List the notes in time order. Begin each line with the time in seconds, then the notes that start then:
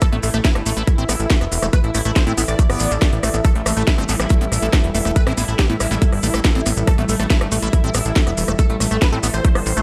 Already playing: E3 E4 A4 E5
0.01 A3 A4, kick, cross-stick, closed hi-hat, maracas
0.12 A1 A3 B3, closed hi-hat
0.23 A1 A3, open hi-hat, maracas
0.34 A1 A3, cross-stick, maracas
0.44 A3 E4, kick, snare, closed hi-hat, maracas
0.55 G1 A3, cross-stick, closed hi-hat
0.66 A1 A3, open hi-hat, maracas
0.77 A1 A3 E4, closed hi-hat, maracas
0.87 kick, cross-stick, closed hi-hat, maracas
0.98 A1 C4, closed hi-hat
1.09 A1 B3, cross-stick, open hi-hat, maracas
1.19 A1, closed hi-hat, maracas
1.30 A3, kick, snare, closed hi-hat, maracas
1.41 E1 B3, cross-stick, closed hi-hat
1.52 E1, open hi-hat, maracas
1.62 E1 A3, cross-stick, maracas
1.73 A3 B4, kick, closed hi-hat, maracas
1.84 A1 E4, closed hi-hat
1.95 A1 A3 E4, cross-stick, open hi-hat, maracas
2.05 A1 A3 E4, closed hi-hat, maracas
2.16 C5, kick, cross-stick, snare, closed hi-hat, maracas
2.27 A2 C4 E4, closed hi-hat
2.37 A1 B3 E4, open hi-hat, maracas
2.48 A1 D5, cross-stick, closed hi-hat, maracas
2.59 A3, kick, closed hi-hat, maracas
2.70 G1 B3, cross-stick, open hi-hat
2.79 A1, open hi-hat, maracas
2.91 A1 A3, closed hi-hat, maracas
3.02 A3, kick, cross-stick, snare, closed hi-hat, maracas
3.12 A1, closed hi-hat
3.23 A1 A3, cross-stick, open hi-hat, maracas
3.34 A1 B3, closed hi-hat, maracas
3.44 G3 A3 A4, kick, cross-stick, closed hi-hat, maracas
3.55 A1 A3, closed hi-hat
3.66 A1 A3, cross-stick, open hi-hat, maracas
3.77 A1 A3, maracas
3.87 E4, kick, snare, closed hi-hat, maracas
3.98 G1 A3 C4, cross-stick, closed hi-hat
4.08 A1 A3 B3 C4, open hi-hat, maracas
4.20 A1 C4 E4, cross-stick, closed hi-hat, maracas
4.29 A3, kick, closed hi-hat, maracas
4.41 A1 B3, closed hi-hat
4.52 A1, cross-stick, open hi-hat, maracas
4.62 A1 A3, maracas
4.73 A3, kick, cross-stick, snare, closed hi-hat, maracas
4.84 E1, closed hi-hat
4.95 E1 A3, open hi-hat, maracas
5.05 E1 A3, cross-stick, closed hi-hat, maracas
5.16 B4, kick, closed hi-hat, maracas
5.27 A1 A3 C4 E4, cross-stick, closed hi-hat
5.37 A1 A3 B3 E4, open hi-hat, maracas
5.48 A1 E4, closed hi-hat, maracas
5.59 A3 G4, kick, cross-stick, snare, closed hi-hat, maracas
5.70 A2 B3 E4, closed hi-hat
5.80 A1 A3 E4, cross-stick, open hi-hat, maracas
5.91 A1 A3 E4, maracas
6.02 A3, kick, closed hi-hat, maracas
6.12 G1, cross-stick, open hi-hat
6.23 A1 A3, open hi-hat, maracas
6.34 A1 A3, cross-stick, maracas
6.45 kick, snare, closed hi-hat, maracas
6.55 A1 C4, closed hi-hat
6.66 A1 B3, cross-stick, open hi-hat, maracas
6.77 A1, closed hi-hat, maracas
6.87 A3 A4, kick, cross-stick, closed hi-hat, maracas
6.98 A1 A3 B3, closed hi-hat
7.09 A1 A3, open hi-hat, maracas
7.20 A1 A3, cross-stick, closed hi-hat, maracas
7.30 A3 E4, kick, snare, closed hi-hat, maracas
7.41 G1 A3, cross-stick, closed hi-hat
7.52 A1 A3, open hi-hat, maracas
7.62 A1 A3 E4, closed hi-hat, maracas
7.73 kick, cross-stick, closed hi-hat, maracas
7.84 A1 C4, closed hi-hat
7.94 A1 B3, cross-stick, open hi-hat, maracas
8.05 A1, closed hi-hat, maracas
8.16 A3, kick, snare, closed hi-hat, maracas
8.27 E1 B3, cross-stick, closed hi-hat
8.37 E1, open hi-hat, maracas
8.48 E1 A3, cross-stick, maracas
8.59 A3 A4, kick, closed hi-hat, maracas
8.70 A1 A3, closed hi-hat
8.80 A1 A3, cross-stick, open hi-hat, maracas
8.91 A1 A3, closed hi-hat, maracas
9.02 B4, kick, cross-stick, snare, closed hi-hat, maracas
9.12 A2 A3 C4, closed hi-hat
9.23 A1 A3 B3, open hi-hat, maracas
9.34 A1 C5, cross-stick, closed hi-hat, maracas
9.44 A3, kick, closed hi-hat, maracas
9.55 G1 B3, cross-stick, open hi-hat
9.66 A1, open hi-hat, maracas
9.77 A1 A3, closed hi-hat, maracas